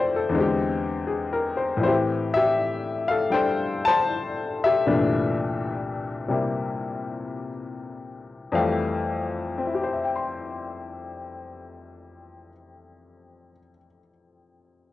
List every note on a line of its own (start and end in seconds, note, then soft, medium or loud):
0.00 0.35 F2 medium
0.00 0.35 E3 soft
0.00 0.35 A3 soft
0.00 0.36 G4 medium
0.00 0.15 A4 medium
0.00 0.37 C5 medium
0.00 0.12 D5 soft
0.00 0.37 E5 soft
0.00 0.31 F5 medium
0.16 0.42 A4 medium
0.29 1.79 E2 medium
0.29 1.81 D3 medium
0.35 1.82 G#3 medium
0.35 1.83 C4 medium
0.40 1.85 G4 medium
1.07 1.55 G#4 soft
1.33 1.71 A#4 medium
1.57 1.82 C5 soft
1.77 4.85 A2 medium
1.77 4.85 E3 soft
1.83 4.89 C4 soft
1.83 1.97 E4 medium
1.83 1.95 C5 medium
1.88 2.35 G4 medium
2.34 3.05 G4 medium
2.34 3.10 E5 loud
3.08 3.31 A4 medium
3.08 3.32 F5 medium
3.30 4.88 G3 soft
3.30 4.86 D4 soft
3.30 4.89 A4 medium
3.30 3.82 C5 medium
3.30 3.81 G5 medium
3.85 4.61 C5 medium
3.85 4.66 A5 loud
4.64 7.50 G4 medium
4.64 7.50 E5 medium
4.87 8.53 C2 soft
4.87 8.53 G2 medium
4.87 8.53 A#2 medium
4.87 8.52 E3 medium
4.87 8.53 A3 medium
4.87 8.53 D4 medium
6.28 8.53 C3 soft
6.28 8.52 G3 soft
6.28 8.54 A#3 soft
6.28 8.54 C4 soft
6.28 8.54 E4 soft
8.52 12.49 F2 medium
8.52 12.51 E3 medium
8.52 12.51 G3 medium
8.52 12.52 A3 medium
8.52 12.49 F5 medium
9.58 13.52 C4 soft
9.66 13.59 E4 soft
9.75 13.68 G4 soft
9.83 13.77 C5 soft
9.93 13.87 E5 soft
10.04 13.98 G5 soft
10.16 14.09 C6 soft